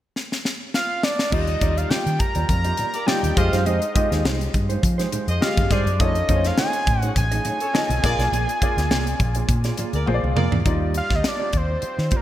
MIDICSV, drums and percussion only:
0, 0, Header, 1, 2, 480
1, 0, Start_track
1, 0, Key_signature, -3, "major"
1, 0, Tempo, 583090
1, 1096, Time_signature, 4, 2, 24, 8
1, 10059, End_track
2, 0, Start_track
2, 0, Title_t, "Drums"
2, 133, Note_on_c, 9, 38, 49
2, 215, Note_off_c, 9, 38, 0
2, 265, Note_on_c, 9, 38, 55
2, 347, Note_off_c, 9, 38, 0
2, 373, Note_on_c, 9, 38, 65
2, 455, Note_off_c, 9, 38, 0
2, 612, Note_on_c, 9, 38, 80
2, 694, Note_off_c, 9, 38, 0
2, 851, Note_on_c, 9, 38, 104
2, 934, Note_off_c, 9, 38, 0
2, 982, Note_on_c, 9, 38, 91
2, 1064, Note_off_c, 9, 38, 0
2, 1090, Note_on_c, 9, 36, 107
2, 1091, Note_on_c, 9, 49, 73
2, 1094, Note_on_c, 9, 62, 46
2, 1172, Note_off_c, 9, 36, 0
2, 1173, Note_off_c, 9, 49, 0
2, 1176, Note_off_c, 9, 62, 0
2, 1213, Note_on_c, 9, 42, 51
2, 1295, Note_off_c, 9, 42, 0
2, 1328, Note_on_c, 9, 42, 66
2, 1329, Note_on_c, 9, 36, 83
2, 1410, Note_off_c, 9, 42, 0
2, 1411, Note_off_c, 9, 36, 0
2, 1462, Note_on_c, 9, 42, 54
2, 1545, Note_off_c, 9, 42, 0
2, 1569, Note_on_c, 9, 63, 79
2, 1573, Note_on_c, 9, 38, 115
2, 1651, Note_off_c, 9, 63, 0
2, 1655, Note_off_c, 9, 38, 0
2, 1702, Note_on_c, 9, 42, 48
2, 1784, Note_off_c, 9, 42, 0
2, 1807, Note_on_c, 9, 42, 58
2, 1811, Note_on_c, 9, 36, 83
2, 1890, Note_off_c, 9, 42, 0
2, 1893, Note_off_c, 9, 36, 0
2, 1934, Note_on_c, 9, 42, 53
2, 2016, Note_off_c, 9, 42, 0
2, 2049, Note_on_c, 9, 36, 73
2, 2050, Note_on_c, 9, 42, 74
2, 2057, Note_on_c, 9, 62, 45
2, 2057, Note_on_c, 9, 64, 60
2, 2132, Note_off_c, 9, 36, 0
2, 2132, Note_off_c, 9, 42, 0
2, 2139, Note_off_c, 9, 62, 0
2, 2139, Note_off_c, 9, 64, 0
2, 2177, Note_on_c, 9, 42, 51
2, 2259, Note_off_c, 9, 42, 0
2, 2284, Note_on_c, 9, 42, 75
2, 2297, Note_on_c, 9, 62, 49
2, 2297, Note_on_c, 9, 64, 68
2, 2366, Note_off_c, 9, 42, 0
2, 2380, Note_off_c, 9, 62, 0
2, 2380, Note_off_c, 9, 64, 0
2, 2417, Note_on_c, 9, 42, 50
2, 2500, Note_off_c, 9, 42, 0
2, 2534, Note_on_c, 9, 38, 105
2, 2539, Note_on_c, 9, 63, 58
2, 2616, Note_off_c, 9, 38, 0
2, 2621, Note_off_c, 9, 63, 0
2, 2667, Note_on_c, 9, 42, 51
2, 2669, Note_on_c, 9, 63, 72
2, 2749, Note_off_c, 9, 42, 0
2, 2752, Note_off_c, 9, 63, 0
2, 2773, Note_on_c, 9, 42, 81
2, 2774, Note_on_c, 9, 36, 100
2, 2856, Note_off_c, 9, 36, 0
2, 2856, Note_off_c, 9, 42, 0
2, 2906, Note_on_c, 9, 42, 55
2, 2910, Note_on_c, 9, 38, 37
2, 2988, Note_off_c, 9, 42, 0
2, 2992, Note_off_c, 9, 38, 0
2, 3015, Note_on_c, 9, 42, 67
2, 3022, Note_on_c, 9, 62, 46
2, 3097, Note_off_c, 9, 42, 0
2, 3105, Note_off_c, 9, 62, 0
2, 3143, Note_on_c, 9, 42, 49
2, 3225, Note_off_c, 9, 42, 0
2, 3256, Note_on_c, 9, 36, 87
2, 3257, Note_on_c, 9, 42, 69
2, 3339, Note_off_c, 9, 36, 0
2, 3340, Note_off_c, 9, 42, 0
2, 3392, Note_on_c, 9, 42, 55
2, 3393, Note_on_c, 9, 38, 38
2, 3475, Note_off_c, 9, 42, 0
2, 3476, Note_off_c, 9, 38, 0
2, 3499, Note_on_c, 9, 63, 74
2, 3503, Note_on_c, 9, 38, 110
2, 3582, Note_off_c, 9, 63, 0
2, 3585, Note_off_c, 9, 38, 0
2, 3632, Note_on_c, 9, 42, 51
2, 3714, Note_off_c, 9, 42, 0
2, 3739, Note_on_c, 9, 36, 84
2, 3740, Note_on_c, 9, 42, 55
2, 3741, Note_on_c, 9, 62, 34
2, 3821, Note_off_c, 9, 36, 0
2, 3822, Note_off_c, 9, 42, 0
2, 3823, Note_off_c, 9, 62, 0
2, 3867, Note_on_c, 9, 42, 51
2, 3949, Note_off_c, 9, 42, 0
2, 3979, Note_on_c, 9, 36, 76
2, 3986, Note_on_c, 9, 42, 80
2, 3987, Note_on_c, 9, 62, 41
2, 4061, Note_off_c, 9, 36, 0
2, 4068, Note_off_c, 9, 42, 0
2, 4069, Note_off_c, 9, 62, 0
2, 4112, Note_on_c, 9, 42, 57
2, 4115, Note_on_c, 9, 38, 35
2, 4194, Note_off_c, 9, 42, 0
2, 4197, Note_off_c, 9, 38, 0
2, 4219, Note_on_c, 9, 42, 77
2, 4224, Note_on_c, 9, 62, 49
2, 4224, Note_on_c, 9, 64, 71
2, 4301, Note_off_c, 9, 42, 0
2, 4306, Note_off_c, 9, 62, 0
2, 4306, Note_off_c, 9, 64, 0
2, 4347, Note_on_c, 9, 42, 50
2, 4429, Note_off_c, 9, 42, 0
2, 4464, Note_on_c, 9, 38, 106
2, 4465, Note_on_c, 9, 63, 62
2, 4546, Note_off_c, 9, 38, 0
2, 4548, Note_off_c, 9, 63, 0
2, 4589, Note_on_c, 9, 36, 95
2, 4589, Note_on_c, 9, 42, 51
2, 4595, Note_on_c, 9, 63, 74
2, 4671, Note_off_c, 9, 36, 0
2, 4671, Note_off_c, 9, 42, 0
2, 4677, Note_off_c, 9, 63, 0
2, 4697, Note_on_c, 9, 36, 90
2, 4699, Note_on_c, 9, 38, 33
2, 4699, Note_on_c, 9, 42, 76
2, 4779, Note_off_c, 9, 36, 0
2, 4781, Note_off_c, 9, 38, 0
2, 4781, Note_off_c, 9, 42, 0
2, 4832, Note_on_c, 9, 42, 54
2, 4915, Note_off_c, 9, 42, 0
2, 4938, Note_on_c, 9, 42, 73
2, 4939, Note_on_c, 9, 36, 109
2, 4943, Note_on_c, 9, 62, 46
2, 5020, Note_off_c, 9, 42, 0
2, 5021, Note_off_c, 9, 36, 0
2, 5025, Note_off_c, 9, 62, 0
2, 5065, Note_on_c, 9, 42, 53
2, 5148, Note_off_c, 9, 42, 0
2, 5176, Note_on_c, 9, 36, 90
2, 5176, Note_on_c, 9, 42, 66
2, 5258, Note_off_c, 9, 42, 0
2, 5259, Note_off_c, 9, 36, 0
2, 5305, Note_on_c, 9, 42, 59
2, 5306, Note_on_c, 9, 38, 38
2, 5388, Note_off_c, 9, 42, 0
2, 5389, Note_off_c, 9, 38, 0
2, 5413, Note_on_c, 9, 38, 115
2, 5421, Note_on_c, 9, 63, 74
2, 5495, Note_off_c, 9, 38, 0
2, 5503, Note_off_c, 9, 63, 0
2, 5541, Note_on_c, 9, 42, 49
2, 5623, Note_off_c, 9, 42, 0
2, 5656, Note_on_c, 9, 36, 89
2, 5656, Note_on_c, 9, 42, 56
2, 5738, Note_off_c, 9, 42, 0
2, 5739, Note_off_c, 9, 36, 0
2, 5783, Note_on_c, 9, 42, 52
2, 5865, Note_off_c, 9, 42, 0
2, 5894, Note_on_c, 9, 36, 82
2, 5894, Note_on_c, 9, 42, 80
2, 5901, Note_on_c, 9, 62, 45
2, 5901, Note_on_c, 9, 64, 61
2, 5976, Note_off_c, 9, 36, 0
2, 5976, Note_off_c, 9, 42, 0
2, 5983, Note_off_c, 9, 62, 0
2, 5983, Note_off_c, 9, 64, 0
2, 6023, Note_on_c, 9, 42, 54
2, 6105, Note_off_c, 9, 42, 0
2, 6131, Note_on_c, 9, 42, 73
2, 6136, Note_on_c, 9, 62, 52
2, 6136, Note_on_c, 9, 64, 66
2, 6214, Note_off_c, 9, 42, 0
2, 6219, Note_off_c, 9, 62, 0
2, 6219, Note_off_c, 9, 64, 0
2, 6260, Note_on_c, 9, 42, 54
2, 6342, Note_off_c, 9, 42, 0
2, 6374, Note_on_c, 9, 63, 59
2, 6378, Note_on_c, 9, 38, 111
2, 6456, Note_off_c, 9, 63, 0
2, 6460, Note_off_c, 9, 38, 0
2, 6506, Note_on_c, 9, 42, 52
2, 6507, Note_on_c, 9, 63, 72
2, 6589, Note_off_c, 9, 42, 0
2, 6589, Note_off_c, 9, 63, 0
2, 6616, Note_on_c, 9, 36, 106
2, 6620, Note_on_c, 9, 38, 35
2, 6620, Note_on_c, 9, 42, 78
2, 6698, Note_off_c, 9, 36, 0
2, 6703, Note_off_c, 9, 38, 0
2, 6703, Note_off_c, 9, 42, 0
2, 6747, Note_on_c, 9, 42, 53
2, 6751, Note_on_c, 9, 38, 37
2, 6830, Note_off_c, 9, 42, 0
2, 6834, Note_off_c, 9, 38, 0
2, 6858, Note_on_c, 9, 62, 46
2, 6861, Note_on_c, 9, 42, 71
2, 6940, Note_off_c, 9, 62, 0
2, 6944, Note_off_c, 9, 42, 0
2, 6990, Note_on_c, 9, 42, 48
2, 7072, Note_off_c, 9, 42, 0
2, 7094, Note_on_c, 9, 36, 87
2, 7096, Note_on_c, 9, 42, 70
2, 7177, Note_off_c, 9, 36, 0
2, 7178, Note_off_c, 9, 42, 0
2, 7228, Note_on_c, 9, 42, 57
2, 7229, Note_on_c, 9, 38, 36
2, 7310, Note_off_c, 9, 42, 0
2, 7311, Note_off_c, 9, 38, 0
2, 7333, Note_on_c, 9, 63, 78
2, 7335, Note_on_c, 9, 38, 115
2, 7415, Note_off_c, 9, 63, 0
2, 7418, Note_off_c, 9, 38, 0
2, 7465, Note_on_c, 9, 42, 49
2, 7548, Note_off_c, 9, 42, 0
2, 7572, Note_on_c, 9, 36, 86
2, 7574, Note_on_c, 9, 42, 53
2, 7574, Note_on_c, 9, 62, 34
2, 7655, Note_off_c, 9, 36, 0
2, 7656, Note_off_c, 9, 42, 0
2, 7656, Note_off_c, 9, 62, 0
2, 7694, Note_on_c, 9, 42, 54
2, 7776, Note_off_c, 9, 42, 0
2, 7809, Note_on_c, 9, 36, 83
2, 7811, Note_on_c, 9, 42, 83
2, 7817, Note_on_c, 9, 62, 40
2, 7891, Note_off_c, 9, 36, 0
2, 7893, Note_off_c, 9, 42, 0
2, 7900, Note_off_c, 9, 62, 0
2, 7936, Note_on_c, 9, 42, 59
2, 7939, Note_on_c, 9, 38, 34
2, 8018, Note_off_c, 9, 42, 0
2, 8021, Note_off_c, 9, 38, 0
2, 8047, Note_on_c, 9, 42, 85
2, 8058, Note_on_c, 9, 62, 47
2, 8058, Note_on_c, 9, 64, 66
2, 8129, Note_off_c, 9, 42, 0
2, 8141, Note_off_c, 9, 62, 0
2, 8141, Note_off_c, 9, 64, 0
2, 8177, Note_on_c, 9, 42, 49
2, 8259, Note_off_c, 9, 42, 0
2, 8292, Note_on_c, 9, 48, 54
2, 8297, Note_on_c, 9, 63, 54
2, 8375, Note_off_c, 9, 48, 0
2, 8379, Note_off_c, 9, 63, 0
2, 8430, Note_on_c, 9, 63, 76
2, 8512, Note_off_c, 9, 63, 0
2, 8533, Note_on_c, 9, 45, 93
2, 8616, Note_off_c, 9, 45, 0
2, 8661, Note_on_c, 9, 43, 87
2, 8744, Note_off_c, 9, 43, 0
2, 8772, Note_on_c, 9, 42, 64
2, 8773, Note_on_c, 9, 36, 89
2, 8854, Note_off_c, 9, 42, 0
2, 8855, Note_off_c, 9, 36, 0
2, 9009, Note_on_c, 9, 42, 65
2, 9091, Note_off_c, 9, 42, 0
2, 9140, Note_on_c, 9, 38, 34
2, 9141, Note_on_c, 9, 36, 80
2, 9223, Note_off_c, 9, 38, 0
2, 9224, Note_off_c, 9, 36, 0
2, 9254, Note_on_c, 9, 38, 103
2, 9255, Note_on_c, 9, 42, 68
2, 9336, Note_off_c, 9, 38, 0
2, 9337, Note_off_c, 9, 42, 0
2, 9489, Note_on_c, 9, 42, 52
2, 9494, Note_on_c, 9, 36, 74
2, 9571, Note_off_c, 9, 42, 0
2, 9576, Note_off_c, 9, 36, 0
2, 9730, Note_on_c, 9, 42, 66
2, 9812, Note_off_c, 9, 42, 0
2, 9864, Note_on_c, 9, 38, 31
2, 9947, Note_off_c, 9, 38, 0
2, 9968, Note_on_c, 9, 42, 73
2, 9974, Note_on_c, 9, 36, 85
2, 10050, Note_off_c, 9, 42, 0
2, 10057, Note_off_c, 9, 36, 0
2, 10059, End_track
0, 0, End_of_file